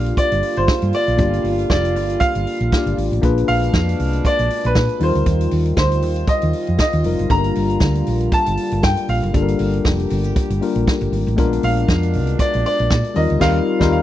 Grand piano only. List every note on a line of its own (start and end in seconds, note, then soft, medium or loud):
0.00 0.13 F5 loud
0.18 0.58 D5 loud
0.57 0.95 C5 medium
0.95 1.41 D5 loud
1.70 2.17 D5 medium
2.20 2.93 F5 loud
3.48 4.27 F5 loud
4.26 4.66 D5 loud
4.66 5.03 B4 loud
5.03 5.49 C5 medium
5.78 6.30 C5 medium
6.29 6.79 D#5 loud
6.80 7.32 D#5 loud
7.31 8.36 A#5 loud
8.33 8.80 A5 loud
8.84 9.10 G5 loud
9.09 9.81 F5 medium
11.64 12.42 F5 loud
12.40 12.65 D5 medium
12.66 13.18 D5 loud
13.16 13.42 D#5 medium
13.41 13.91 F5 loud
13.92 14.02 F5 medium